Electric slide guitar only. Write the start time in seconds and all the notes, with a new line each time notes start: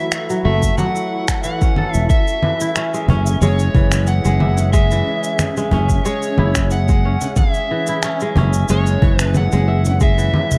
Already playing: E5
0.45 E5
0.78 F#5
1.44 F#5
1.95 E5
2.10 E5
3.42 C#5
4.08 F#5
4.73 E5
6.05 C#5
6.72 F#5
7.37 E5
8.70 C#5
9.21 B4
9.37 F#5
10.03 E5